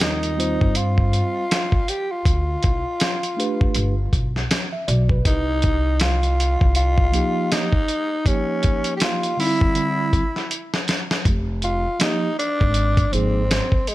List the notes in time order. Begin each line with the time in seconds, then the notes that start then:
Already playing: D#2 G3 C4 F4 A#4
0.00 D#4, snare, closed hi-hat
0.23 closed hi-hat
0.37 G3 C4 F4 C5, closed hi-hat
0.61 G2, kick
0.75 F4, closed hi-hat
0.98 kick
1.13 closed hi-hat
1.51 snare, closed hi-hat
1.72 kick
1.88 G4, closed hi-hat
2.11 F4
2.25 D2, kick, closed hi-hat
2.63 C2, kick, closed hi-hat
3.00 snare, closed hi-hat
3.23 closed hi-hat
3.37 A3 D4 G4 B4, closed hi-hat
3.61 kick
3.75 G1, closed hi-hat
4.13 B1, kick, closed hi-hat
4.36 snare
4.51 snare, closed hi-hat
4.73 E5
4.88 B1 D5, closed hi-hat
5.09 B4, kick
5.25 C2 D#4, kick, closed hi-hat
5.62 kick, closed hi-hat
6.00 F4, snare, closed hi-hat
6.23 closed hi-hat
6.40 closed hi-hat
6.61 C2, kick
6.75 F4, closed hi-hat
6.98 kick
7.12 F3 A#3 D#4 G4, closed hi-hat
7.52 D#4, snare, closed hi-hat
7.73 kick
7.88 closed hi-hat
8.25 F3 A#3 C#4 D#4 G4, kick, closed hi-hat
8.63 kick, closed hi-hat
8.84 closed hi-hat
8.96 G4, closed hi-hat
9.02 F4, snare
9.23 closed hi-hat
9.37 D3 G3 C4 D#4 E4, open hi-hat
9.47 E4
9.61 kick
9.75 D3 G3 C4 E4, closed hi-hat
10.13 kick, closed hi-hat
10.36 snare
10.51 closed hi-hat
10.74 snare
10.88 snare, closed hi-hat
11.11 snare
11.25 F1, kick, closed hi-hat
11.62 F4, closed hi-hat
11.99 F3 A#3 D#4 G4, snare, closed hi-hat
12.39 D4, closed hi-hat
12.61 G#1, kick
12.74 closed hi-hat
12.97 kick, closed hi-hat
13.12 G#1 F3 A#3 C4 D#4 G#4, closed hi-hat
13.51 snare, closed hi-hat
13.72 kick
13.87 G#3, closed hi-hat